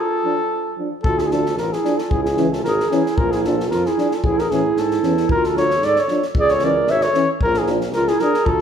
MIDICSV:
0, 0, Header, 1, 7, 480
1, 0, Start_track
1, 0, Tempo, 530973
1, 947, Time_signature, 2, 2, 24, 8
1, 7785, End_track
2, 0, Start_track
2, 0, Title_t, "Flugelhorn"
2, 0, Program_c, 0, 56
2, 0, Note_on_c, 0, 69, 98
2, 697, Note_off_c, 0, 69, 0
2, 930, Note_on_c, 0, 69, 90
2, 1068, Note_on_c, 0, 68, 68
2, 1082, Note_off_c, 0, 69, 0
2, 1103, Note_on_c, 0, 69, 60
2, 1117, Note_off_c, 0, 68, 0
2, 1136, Note_on_c, 0, 68, 73
2, 1149, Note_off_c, 0, 69, 0
2, 1193, Note_on_c, 0, 69, 81
2, 1207, Note_off_c, 0, 68, 0
2, 1428, Note_off_c, 0, 69, 0
2, 1434, Note_on_c, 0, 70, 72
2, 1560, Note_on_c, 0, 68, 80
2, 1574, Note_off_c, 0, 70, 0
2, 1792, Note_on_c, 0, 69, 67
2, 1806, Note_off_c, 0, 68, 0
2, 1900, Note_on_c, 0, 68, 100
2, 1914, Note_off_c, 0, 69, 0
2, 2016, Note_off_c, 0, 68, 0
2, 2021, Note_on_c, 0, 68, 73
2, 2280, Note_on_c, 0, 69, 66
2, 2293, Note_off_c, 0, 68, 0
2, 2376, Note_off_c, 0, 69, 0
2, 2381, Note_on_c, 0, 70, 86
2, 2617, Note_on_c, 0, 68, 82
2, 2630, Note_off_c, 0, 70, 0
2, 2865, Note_on_c, 0, 70, 100
2, 2878, Note_off_c, 0, 68, 0
2, 2993, Note_on_c, 0, 68, 82
2, 3007, Note_off_c, 0, 70, 0
2, 3108, Note_off_c, 0, 68, 0
2, 3112, Note_on_c, 0, 69, 74
2, 3336, Note_off_c, 0, 69, 0
2, 3345, Note_on_c, 0, 70, 76
2, 3489, Note_on_c, 0, 68, 78
2, 3503, Note_off_c, 0, 70, 0
2, 3743, Note_on_c, 0, 69, 61
2, 3756, Note_off_c, 0, 68, 0
2, 3830, Note_on_c, 0, 68, 95
2, 3844, Note_off_c, 0, 69, 0
2, 3968, Note_on_c, 0, 70, 80
2, 3982, Note_off_c, 0, 68, 0
2, 4073, Note_on_c, 0, 68, 84
2, 4087, Note_off_c, 0, 70, 0
2, 4332, Note_on_c, 0, 69, 80
2, 4345, Note_off_c, 0, 68, 0
2, 4788, Note_off_c, 0, 69, 0
2, 4793, Note_on_c, 0, 70, 100
2, 4939, Note_on_c, 0, 69, 75
2, 4953, Note_off_c, 0, 70, 0
2, 5032, Note_off_c, 0, 69, 0
2, 5037, Note_on_c, 0, 73, 94
2, 5284, Note_on_c, 0, 74, 95
2, 5297, Note_off_c, 0, 73, 0
2, 5419, Note_on_c, 0, 73, 82
2, 5432, Note_off_c, 0, 74, 0
2, 5649, Note_off_c, 0, 73, 0
2, 5775, Note_on_c, 0, 74, 105
2, 5884, Note_on_c, 0, 73, 92
2, 5898, Note_off_c, 0, 74, 0
2, 6006, Note_on_c, 0, 74, 90
2, 6019, Note_off_c, 0, 73, 0
2, 6236, Note_on_c, 0, 76, 88
2, 6250, Note_off_c, 0, 74, 0
2, 6351, Note_on_c, 0, 73, 89
2, 6365, Note_off_c, 0, 76, 0
2, 6594, Note_off_c, 0, 73, 0
2, 6718, Note_on_c, 0, 70, 106
2, 6855, Note_on_c, 0, 68, 74
2, 6869, Note_off_c, 0, 70, 0
2, 6954, Note_off_c, 0, 68, 0
2, 7173, Note_on_c, 0, 70, 93
2, 7306, Note_on_c, 0, 68, 84
2, 7320, Note_off_c, 0, 70, 0
2, 7410, Note_on_c, 0, 70, 99
2, 7424, Note_off_c, 0, 68, 0
2, 7647, Note_on_c, 0, 69, 93
2, 7661, Note_off_c, 0, 70, 0
2, 7785, Note_off_c, 0, 69, 0
2, 7785, End_track
3, 0, Start_track
3, 0, Title_t, "Clarinet"
3, 0, Program_c, 1, 71
3, 1, Note_on_c, 1, 65, 73
3, 716, Note_off_c, 1, 65, 0
3, 955, Note_on_c, 1, 65, 72
3, 1093, Note_on_c, 1, 64, 50
3, 1107, Note_off_c, 1, 65, 0
3, 1120, Note_on_c, 1, 65, 43
3, 1133, Note_off_c, 1, 64, 0
3, 1151, Note_on_c, 1, 64, 45
3, 1164, Note_off_c, 1, 65, 0
3, 1210, Note_on_c, 1, 65, 64
3, 1224, Note_off_c, 1, 64, 0
3, 1440, Note_off_c, 1, 65, 0
3, 1465, Note_on_c, 1, 65, 63
3, 1591, Note_on_c, 1, 64, 56
3, 1605, Note_off_c, 1, 65, 0
3, 1835, Note_on_c, 1, 65, 59
3, 1848, Note_off_c, 1, 64, 0
3, 1928, Note_on_c, 1, 64, 61
3, 1942, Note_off_c, 1, 65, 0
3, 2051, Note_off_c, 1, 64, 0
3, 2067, Note_on_c, 1, 64, 52
3, 2292, Note_on_c, 1, 65, 58
3, 2306, Note_off_c, 1, 64, 0
3, 2397, Note_off_c, 1, 65, 0
3, 2418, Note_on_c, 1, 68, 71
3, 2656, Note_on_c, 1, 64, 69
3, 2670, Note_off_c, 1, 68, 0
3, 2883, Note_on_c, 1, 65, 79
3, 2897, Note_off_c, 1, 64, 0
3, 3022, Note_on_c, 1, 64, 59
3, 3035, Note_off_c, 1, 65, 0
3, 3122, Note_off_c, 1, 64, 0
3, 3147, Note_on_c, 1, 65, 64
3, 3354, Note_off_c, 1, 65, 0
3, 3378, Note_on_c, 1, 65, 78
3, 3505, Note_on_c, 1, 64, 65
3, 3519, Note_off_c, 1, 65, 0
3, 3768, Note_on_c, 1, 65, 64
3, 3781, Note_off_c, 1, 64, 0
3, 3869, Note_on_c, 1, 64, 75
3, 3883, Note_off_c, 1, 65, 0
3, 3985, Note_on_c, 1, 68, 57
3, 3999, Note_off_c, 1, 64, 0
3, 4110, Note_on_c, 1, 64, 68
3, 4123, Note_off_c, 1, 68, 0
3, 4341, Note_off_c, 1, 64, 0
3, 4341, Note_on_c, 1, 64, 76
3, 4806, Note_off_c, 1, 64, 0
3, 4835, Note_on_c, 1, 65, 78
3, 4956, Note_off_c, 1, 65, 0
3, 4956, Note_on_c, 1, 65, 65
3, 5048, Note_off_c, 1, 65, 0
3, 5062, Note_on_c, 1, 69, 71
3, 5297, Note_off_c, 1, 69, 0
3, 5297, Note_on_c, 1, 69, 84
3, 5437, Note_off_c, 1, 69, 0
3, 5437, Note_on_c, 1, 69, 68
3, 5659, Note_off_c, 1, 69, 0
3, 5781, Note_on_c, 1, 68, 87
3, 5908, Note_on_c, 1, 69, 71
3, 5921, Note_off_c, 1, 68, 0
3, 6011, Note_on_c, 1, 70, 80
3, 6024, Note_off_c, 1, 69, 0
3, 6253, Note_on_c, 1, 73, 78
3, 6267, Note_off_c, 1, 70, 0
3, 6374, Note_on_c, 1, 69, 67
3, 6388, Note_off_c, 1, 73, 0
3, 6606, Note_off_c, 1, 69, 0
3, 6730, Note_on_c, 1, 65, 73
3, 6870, Note_on_c, 1, 64, 51
3, 6883, Note_off_c, 1, 65, 0
3, 6962, Note_off_c, 1, 64, 0
3, 7196, Note_on_c, 1, 65, 90
3, 7325, Note_on_c, 1, 64, 75
3, 7338, Note_off_c, 1, 65, 0
3, 7433, Note_on_c, 1, 68, 78
3, 7446, Note_off_c, 1, 64, 0
3, 7645, Note_on_c, 1, 65, 86
3, 7658, Note_off_c, 1, 68, 0
3, 7785, Note_off_c, 1, 65, 0
3, 7785, End_track
4, 0, Start_track
4, 0, Title_t, "Euphonium"
4, 0, Program_c, 2, 58
4, 225, Note_on_c, 2, 62, 51
4, 321, Note_off_c, 2, 62, 0
4, 717, Note_on_c, 2, 62, 46
4, 811, Note_off_c, 2, 62, 0
4, 1192, Note_on_c, 2, 62, 52
4, 1287, Note_off_c, 2, 62, 0
4, 1668, Note_on_c, 2, 62, 66
4, 1765, Note_off_c, 2, 62, 0
4, 2147, Note_on_c, 2, 61, 57
4, 2244, Note_off_c, 2, 61, 0
4, 2636, Note_on_c, 2, 61, 74
4, 2731, Note_off_c, 2, 61, 0
4, 3124, Note_on_c, 2, 62, 54
4, 3218, Note_off_c, 2, 62, 0
4, 3597, Note_on_c, 2, 62, 64
4, 3692, Note_off_c, 2, 62, 0
4, 4085, Note_on_c, 2, 61, 53
4, 4179, Note_off_c, 2, 61, 0
4, 4549, Note_on_c, 2, 61, 52
4, 4646, Note_off_c, 2, 61, 0
4, 5024, Note_on_c, 2, 62, 47
4, 5121, Note_off_c, 2, 62, 0
4, 5509, Note_on_c, 2, 62, 62
4, 5605, Note_off_c, 2, 62, 0
4, 5994, Note_on_c, 2, 61, 59
4, 6088, Note_off_c, 2, 61, 0
4, 6462, Note_on_c, 2, 61, 69
4, 6559, Note_off_c, 2, 61, 0
4, 6945, Note_on_c, 2, 62, 58
4, 7041, Note_off_c, 2, 62, 0
4, 7430, Note_on_c, 2, 62, 63
4, 7524, Note_off_c, 2, 62, 0
4, 7785, End_track
5, 0, Start_track
5, 0, Title_t, "Trombone"
5, 0, Program_c, 3, 57
5, 224, Note_on_c, 3, 53, 49
5, 320, Note_off_c, 3, 53, 0
5, 702, Note_on_c, 3, 53, 49
5, 799, Note_off_c, 3, 53, 0
5, 1198, Note_on_c, 3, 53, 59
5, 1293, Note_off_c, 3, 53, 0
5, 1679, Note_on_c, 3, 53, 52
5, 1774, Note_off_c, 3, 53, 0
5, 2152, Note_on_c, 3, 52, 68
5, 2248, Note_off_c, 3, 52, 0
5, 2630, Note_on_c, 3, 52, 60
5, 2727, Note_off_c, 3, 52, 0
5, 3124, Note_on_c, 3, 53, 66
5, 3218, Note_off_c, 3, 53, 0
5, 3587, Note_on_c, 3, 53, 52
5, 3684, Note_off_c, 3, 53, 0
5, 4072, Note_on_c, 3, 52, 64
5, 4168, Note_off_c, 3, 52, 0
5, 4559, Note_on_c, 3, 52, 44
5, 4653, Note_off_c, 3, 52, 0
5, 5034, Note_on_c, 3, 53, 60
5, 5129, Note_off_c, 3, 53, 0
5, 5510, Note_on_c, 3, 53, 59
5, 5606, Note_off_c, 3, 53, 0
5, 5984, Note_on_c, 3, 52, 64
5, 6081, Note_off_c, 3, 52, 0
5, 6457, Note_on_c, 3, 52, 63
5, 6555, Note_off_c, 3, 52, 0
5, 6939, Note_on_c, 3, 53, 66
5, 7036, Note_off_c, 3, 53, 0
5, 7408, Note_on_c, 3, 53, 53
5, 7506, Note_off_c, 3, 53, 0
5, 7785, End_track
6, 0, Start_track
6, 0, Title_t, "Tuba"
6, 0, Program_c, 4, 58
6, 947, Note_on_c, 4, 38, 79
6, 1426, Note_on_c, 4, 33, 75
6, 1440, Note_off_c, 4, 38, 0
6, 1560, Note_off_c, 4, 33, 0
6, 1910, Note_on_c, 4, 37, 90
6, 2387, Note_on_c, 4, 32, 92
6, 2400, Note_off_c, 4, 37, 0
6, 2521, Note_off_c, 4, 32, 0
6, 2880, Note_on_c, 4, 34, 82
6, 3358, Note_on_c, 4, 41, 89
6, 3371, Note_off_c, 4, 34, 0
6, 3488, Note_off_c, 4, 41, 0
6, 3829, Note_on_c, 4, 33, 75
6, 4069, Note_off_c, 4, 33, 0
6, 4074, Note_on_c, 4, 45, 63
6, 4289, Note_off_c, 4, 45, 0
6, 4302, Note_on_c, 4, 44, 74
6, 4522, Note_off_c, 4, 44, 0
6, 4546, Note_on_c, 4, 40, 83
6, 4764, Note_off_c, 4, 40, 0
6, 4784, Note_on_c, 4, 38, 76
6, 5254, Note_on_c, 4, 44, 85
6, 5268, Note_off_c, 4, 38, 0
6, 5390, Note_off_c, 4, 44, 0
6, 5742, Note_on_c, 4, 37, 87
6, 6230, Note_on_c, 4, 32, 90
6, 6244, Note_off_c, 4, 37, 0
6, 6361, Note_off_c, 4, 32, 0
6, 6712, Note_on_c, 4, 34, 85
6, 7179, Note_on_c, 4, 37, 88
6, 7193, Note_off_c, 4, 34, 0
6, 7312, Note_off_c, 4, 37, 0
6, 7655, Note_on_c, 4, 38, 76
6, 7785, Note_off_c, 4, 38, 0
6, 7785, End_track
7, 0, Start_track
7, 0, Title_t, "Drums"
7, 943, Note_on_c, 9, 36, 85
7, 1033, Note_off_c, 9, 36, 0
7, 1071, Note_on_c, 9, 38, 22
7, 1162, Note_off_c, 9, 38, 0
7, 1185, Note_on_c, 9, 38, 26
7, 1276, Note_off_c, 9, 38, 0
7, 1320, Note_on_c, 9, 38, 24
7, 1411, Note_off_c, 9, 38, 0
7, 1426, Note_on_c, 9, 38, 27
7, 1517, Note_off_c, 9, 38, 0
7, 1563, Note_on_c, 9, 38, 25
7, 1653, Note_off_c, 9, 38, 0
7, 1671, Note_on_c, 9, 38, 27
7, 1762, Note_off_c, 9, 38, 0
7, 1795, Note_on_c, 9, 38, 25
7, 1885, Note_off_c, 9, 38, 0
7, 1907, Note_on_c, 9, 36, 81
7, 1998, Note_off_c, 9, 36, 0
7, 2038, Note_on_c, 9, 38, 23
7, 2128, Note_off_c, 9, 38, 0
7, 2144, Note_on_c, 9, 38, 25
7, 2234, Note_off_c, 9, 38, 0
7, 2286, Note_on_c, 9, 38, 25
7, 2376, Note_off_c, 9, 38, 0
7, 2395, Note_on_c, 9, 38, 32
7, 2485, Note_off_c, 9, 38, 0
7, 2531, Note_on_c, 9, 38, 25
7, 2622, Note_off_c, 9, 38, 0
7, 2636, Note_on_c, 9, 38, 26
7, 2726, Note_off_c, 9, 38, 0
7, 2768, Note_on_c, 9, 38, 23
7, 2858, Note_off_c, 9, 38, 0
7, 2871, Note_on_c, 9, 36, 93
7, 2962, Note_off_c, 9, 36, 0
7, 3001, Note_on_c, 9, 38, 23
7, 3091, Note_off_c, 9, 38, 0
7, 3115, Note_on_c, 9, 38, 31
7, 3205, Note_off_c, 9, 38, 0
7, 3255, Note_on_c, 9, 38, 25
7, 3346, Note_off_c, 9, 38, 0
7, 3356, Note_on_c, 9, 38, 31
7, 3447, Note_off_c, 9, 38, 0
7, 3488, Note_on_c, 9, 38, 24
7, 3579, Note_off_c, 9, 38, 0
7, 3600, Note_on_c, 9, 38, 25
7, 3690, Note_off_c, 9, 38, 0
7, 3719, Note_on_c, 9, 38, 23
7, 3809, Note_off_c, 9, 38, 0
7, 3830, Note_on_c, 9, 36, 80
7, 3921, Note_off_c, 9, 36, 0
7, 3966, Note_on_c, 9, 38, 23
7, 4057, Note_off_c, 9, 38, 0
7, 4077, Note_on_c, 9, 38, 28
7, 4167, Note_off_c, 9, 38, 0
7, 4311, Note_on_c, 9, 38, 27
7, 4401, Note_off_c, 9, 38, 0
7, 4439, Note_on_c, 9, 38, 22
7, 4529, Note_off_c, 9, 38, 0
7, 4549, Note_on_c, 9, 38, 25
7, 4639, Note_off_c, 9, 38, 0
7, 4676, Note_on_c, 9, 38, 24
7, 4767, Note_off_c, 9, 38, 0
7, 4785, Note_on_c, 9, 36, 83
7, 4875, Note_off_c, 9, 36, 0
7, 4917, Note_on_c, 9, 38, 23
7, 5008, Note_off_c, 9, 38, 0
7, 5035, Note_on_c, 9, 38, 26
7, 5126, Note_off_c, 9, 38, 0
7, 5158, Note_on_c, 9, 38, 26
7, 5248, Note_off_c, 9, 38, 0
7, 5263, Note_on_c, 9, 38, 28
7, 5354, Note_off_c, 9, 38, 0
7, 5388, Note_on_c, 9, 38, 25
7, 5478, Note_off_c, 9, 38, 0
7, 5498, Note_on_c, 9, 38, 24
7, 5589, Note_off_c, 9, 38, 0
7, 5628, Note_on_c, 9, 38, 22
7, 5719, Note_off_c, 9, 38, 0
7, 5739, Note_on_c, 9, 36, 90
7, 5829, Note_off_c, 9, 36, 0
7, 5862, Note_on_c, 9, 38, 26
7, 5952, Note_off_c, 9, 38, 0
7, 5959, Note_on_c, 9, 38, 29
7, 6050, Note_off_c, 9, 38, 0
7, 6213, Note_on_c, 9, 38, 29
7, 6304, Note_off_c, 9, 38, 0
7, 6339, Note_on_c, 9, 38, 27
7, 6429, Note_off_c, 9, 38, 0
7, 6457, Note_on_c, 9, 38, 27
7, 6547, Note_off_c, 9, 38, 0
7, 6695, Note_on_c, 9, 36, 86
7, 6785, Note_off_c, 9, 36, 0
7, 6818, Note_on_c, 9, 38, 25
7, 6908, Note_off_c, 9, 38, 0
7, 6931, Note_on_c, 9, 38, 25
7, 7021, Note_off_c, 9, 38, 0
7, 7060, Note_on_c, 9, 38, 25
7, 7150, Note_off_c, 9, 38, 0
7, 7166, Note_on_c, 9, 38, 31
7, 7256, Note_off_c, 9, 38, 0
7, 7301, Note_on_c, 9, 38, 25
7, 7391, Note_off_c, 9, 38, 0
7, 7407, Note_on_c, 9, 38, 25
7, 7497, Note_off_c, 9, 38, 0
7, 7540, Note_on_c, 9, 38, 25
7, 7630, Note_off_c, 9, 38, 0
7, 7651, Note_on_c, 9, 36, 80
7, 7741, Note_off_c, 9, 36, 0
7, 7785, End_track
0, 0, End_of_file